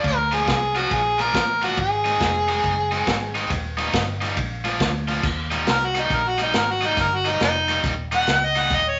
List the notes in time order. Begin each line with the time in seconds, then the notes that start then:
Already playing: F3 A#3 D4 F4
0.04 D2 A#4, kick, ride
0.32 F3 A#3 D4 F4 G#4, snare, ride
0.47 C2, kick, snare, ride
0.75 F3 A#3 D4 F4 F#4, snare, ride
0.91 A#1 G#4, kick, ride
1.18 F3 A#3 D4 F4 A#4, snare, ride
1.34 A1, kick, snare, ride
1.62 F3 A#3 D4 F4 F#4, snare, ride
1.77 G#1 G#4, kick, ride
2.04 D#3 G#3 C4 D#4, snare, ride
2.20 F1, kick, snare, ride
2.48 D#3 G#3 C4 D#4, snare, ride
2.64 F#1, kick, ride
2.91 D#3 G#3 C4 D#4, snare, ride
3.07 G#1, kick, snare, ride
3.35 D#3 G#3 C4 D#4, snare, ride
3.50 D#1, kick, snare, ride
3.77 D#3 G3 A#3 D#4, snare, ride
3.93 G1, kick, snare, ride
4.21 D#3 G3 A#3 D#4, snare, ride
4.37 A#1, kick, ride
4.64 F3 A#3 D4 F4, snare, ride
4.80 D2, kick, snare, ride
5.08 F3 A#3 D4 F4, snare, ride
5.23 D#2, kick, snare, crash
5.51 D#3 G3 A#3 D#4, snare, closed hi-hat
5.67 C2 A#4, snare, closed hi-hat
5.85 F#4
5.95 D#3 G3 A#3 D#4, snare, closed hi-hat
6.00 D#4
6.10 A#1, kick, closed hi-hat
6.15 A#4
6.29 F#4
6.38 D#3 G3 A#3 D#4, snare, closed hi-hat
6.43 D#4
6.53 G#1 A#4, snare, closed hi-hat
6.71 F#4
6.81 D#3 G3 A#3 D#4, snare, closed hi-hat
6.86 D#4
6.97 G1 A#4, kick, snare, closed hi-hat
7.15 F#4
7.25 D#3 G3 A#3 D#4, snare, closed hi-hat
7.29 D#4
7.40 F1 D#4, snare, closed hi-hat
7.68 D#3 G3 A#3 D#4, snare, closed hi-hat
7.83 D#1, kick, snare, closed hi-hat
8.12 D#3 G3 A#3 D#4, snare, closed hi-hat
8.16 F#5
8.27 C#2, snare, closed hi-hat
8.45 D#5
8.55 D#3 G3 A#3 D#4, snare, closed hi-hat
8.59 F#5
8.71 D#1 D#5, kick, closed hi-hat
8.88 C#5